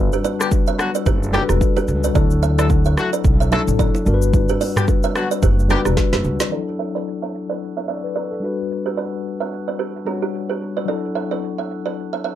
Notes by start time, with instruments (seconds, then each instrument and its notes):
Already playing: tine electric piano G3 D4 F#4 B4
0.12 kalimba G4 B4, shaker
0.24 kalimba B4 D5, low bongo, shaker
0.40 horn section D3 G3 B3 G4, cross-stick, shaker
0.51 kick, high bongo, shaker
0.67 kalimba C#5 E5, shaker
0.79 horn section D3 F#3 B3 F#4, cross-stick, shaker
0.95 kalimba B4 D5, shaker
1.06 upright bass F#1, kalimba G4 B4, kick, low conga, shaker
1.23 shaker
1.32 horn section D3 G3 B3 G4, tine electric piano G3 D4 F#4 A4, kalimba F#4 A4, cross-stick, high bongo, low bongo, low conga, shaker
1.41 tine electric piano B4
1.49 upright bass E1, kalimba E4 G4, cross-stick, shaker
1.61 kick, high bongo, shaker
1.76 kalimba G4 B4, low bongo, shaker
1.88 upright bass C#2, shaker
2.04 kalimba B4 D5, shaker
2.14 upright bass D2, tine electric piano F#3 D4 E4 A4, kalimba A4 D5, kick, low conga, shaker
2.31 shaker
2.43 kalimba C#5 E5, low bongo, shaker
2.58 horn section F#3 A3 E4 A4, kalimba B4 D5, cross-stick, shaker
2.70 kick, high bongo, shaker
2.85 kalimba C#5 E5, shaker
2.97 horn section D3 F#3 A3 F#4, cross-stick, shaker
3.13 kalimba B4 D5, shaker
3.24 upright bass B1, kick, low conga, shaker
3.40 kalimba C#5 E5, shaker
3.50 tine electric piano F#3 D4 E4 A4, horn section F#3 A3 E4 A4, kalimba C#5 E5, cross-stick, high bongo, low bongo, low conga, shaker
3.68 upright bass A1, shaker
3.79 kalimba A4 D5, kick, high bongo, shaker
3.95 low bongo, shaker
4.05 upright bass G1, tine electric piano G3 D4 F#4 A#4, shaker
4.14 tine electric piano B4
4.22 shaker
4.33 kick, low conga, shaker
4.49 kalimba G4 B4, shaker
4.61 kalimba B4 D5, open hi-hat, low bongo, shaker
4.76 horn section D3 G3 B3 G4, cross-stick, mid tom, shaker
4.88 kick, high bongo, shaker
5.03 kalimba C#5 E5, shaker
5.15 horn section D3 F#3 B3 F#4, cross-stick, shaker
5.31 kalimba B4 D5, shaker
5.43 upright bass F#1, kalimba G4 B4, kick, low conga, shaker
5.59 shaker
5.68 horn section D3 G3 B3 G4, tine electric piano G3 D4 F#4 B4, kalimba F#4 A4, cross-stick, high bongo, low bongo, low conga, shaker
5.85 upright bass E1, kalimba E4 G4, cross-stick, shaker
5.97 kick, snare, high bongo, shaker
6.13 upright bass F#1, kalimba G4 B4, snare, low bongo, shaker
6.24 upright bass C#2, shaker
6.40 kalimba B4 D5, snare, shaker
6.49 tine electric piano E3 D4 E4, kalimba A4 D5
6.54 tine electric piano F#3 A4
6.79 kalimba C#5 E5
6.95 kalimba B4 D5
7.22 kalimba C#5 E5
7.50 kalimba B4 D5
7.77 kalimba C#5 E5
7.88 kalimba C#5 E5, tine electric piano D5
8.04 tine electric piano B4
8.16 kalimba A4 D5
8.31 tine electric piano A4
8.40 tine electric piano G3 D4 F#4
8.45 tine electric piano B4
8.86 kalimba G4 B4
8.97 kalimba B4 D5
9.40 kalimba C#5 E5
9.68 kalimba B4 D5
9.79 kalimba G4 B4
10.05 tine electric piano G3 D4 F#4 C#5, kalimba F#4 A4
10.22 kalimba E4 G4
10.50 kalimba G4 B4
10.77 kalimba B4 D5
10.85 tine electric piano F#3 D4 E4, kalimba A4 D5
10.90 tine electric piano A4
11.15 kalimba C#5 E5
11.31 kalimba B4 D5
11.58 kalimba C#5 E5
11.86 kalimba B4 D5
12.13 kalimba C#5 E5
12.24 kalimba C#5 E5